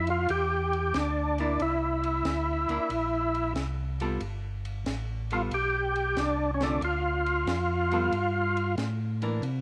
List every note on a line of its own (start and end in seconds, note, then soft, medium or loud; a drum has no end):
0.00 0.27 F2 medium
0.00 0.09 E4 medium
0.07 0.31 F4 medium
0.07 ride soft
0.29 0.93 E2 medium
0.29 0.97 G4 medium
0.29 ride medium
0.73 ride soft
0.94 1.58 D2 medium
0.94 1.39 D4 medium
0.94 snare medium
0.94 hi-hat pedal medium
0.94 ride medium
1.38 1.58 A#3 medium
1.38 1.59 D4 medium
1.38 1.62 D4 medium
1.38 1.59 E4 medium
1.38 ride soft
1.60 2.24 C2 medium
1.60 3.53 E4 medium
1.60 ride soft
2.04 ride soft
2.25 2.66 D2 medium
2.25 snare medium
2.25 hi-hat pedal medium
2.25 ride medium
2.69 2.80 D2 soft
2.69 2.89 A#3 medium
2.69 2.89 D4 medium
2.69 2.90 E4 medium
2.69 ride soft
2.89 3.54 A#1 medium
2.89 ride medium
3.35 ride soft
3.55 4.19 C2 medium
3.55 snare medium
3.55 hi-hat pedal soft
3.55 ride medium
4.00 4.20 G3 medium
4.00 4.20 B3 medium
4.00 4.20 F4 medium
4.00 4.20 A4 medium
4.00 ride soft
4.20 4.85 G1 medium
4.20 ride soft
4.65 ride soft
4.86 5.50 A1 medium
4.86 snare medium
4.86 hi-hat pedal soft
4.86 ride medium
5.31 5.51 G3 medium
5.31 5.51 B3 soft
5.31 5.51 F4 medium
5.31 5.42 F4 medium
5.31 5.51 A4 medium
5.31 ride soft
5.51 6.15 B1 medium
5.51 6.20 G4 medium
5.51 ride medium
5.96 ride soft
6.16 6.80 C2 medium
6.16 6.51 D4 medium
6.16 snare medium
6.16 hi-hat pedal medium
6.16 ride medium
6.54 6.63 C#4 medium
6.61 6.81 D3 medium
6.61 6.81 A3 medium
6.61 6.81 C4 medium
6.61 6.82 D4 medium
6.61 6.82 F4 medium
6.61 snare soft
6.61 ride soft
6.81 7.45 D2 medium
6.81 8.75 F4 medium
6.81 ride soft
7.26 ride soft
7.46 8.10 F2 medium
7.46 snare medium
7.46 hi-hat pedal medium
7.46 ride medium
7.91 8.11 G3 medium
7.91 8.11 B3 medium
7.91 8.12 F4 medium
7.91 8.12 A4 medium
7.91 ride soft
8.12 8.76 G2 medium
8.12 ride soft
8.57 ride soft
8.78 9.41 A2 medium
8.78 snare medium
8.78 hi-hat pedal medium
8.78 ride soft
9.22 9.41 E3 medium
9.22 9.42 A#3 medium
9.22 9.42 D4 medium
9.22 ride soft
9.42 9.61 C3 medium
9.42 ride soft